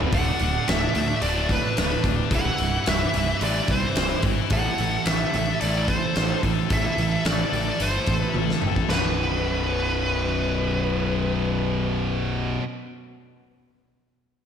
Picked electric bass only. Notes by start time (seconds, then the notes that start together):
0.13 D1
0.41 D1
0.69 D1
0.96 D2
1.22 D1
1.78 D1
2.04 D1
2.31 C1
2.59 C1
2.87 C1
3.15 C1
3.42 A1
3.68 C2
3.96 C1
4.23 G#1
4.51 A1
4.79 A1
5.06 A1
5.34 A1
5.62 A1
6.17 A1
6.43 A1
6.71 A1
6.98 A1
7.25 A1
7.53 A1
7.80 G1
8.08 A1
8.35 A1
8.63 A1
8.90 B0